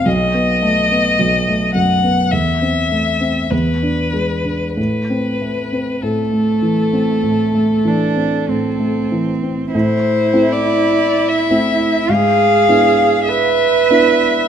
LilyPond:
<<
  \new Staff \with { instrumentName = "Violin" } { \time 4/4 \key a \minor \tempo 4 = 50 dis''4. fis''8 e''4 b'4 | b'4 a'2~ a'8 r8 | \tuplet 3/2 { c''4 d''8~ d''8 e''4 } f''4 e''4 | }
  \new Staff \with { instrumentName = "Cello" } { \time 4/4 \key a \minor r4 a4 a4 gis4 | r4 a4. d'8 c'4 | e'2 gis'4 b'4 | }
  \new Staff \with { instrumentName = "Grand piano" } { \time 4/4 \key a \minor b,,16 b16 a16 b16 b,,16 a16 fis,16 b16 e,16 c'16 a16 c'16 e,16 d'16 gis16 d'16 | a,16 c'16 a16 c'16 a,16 a16 e16 c'16 a,16 a16 e16 c'16 a,16 a16 e16 c'16 | a,8 <a c' e'>4 <a c' e'>8 gis,8 <b d' e'>4 <b d' e'>8 | }
>>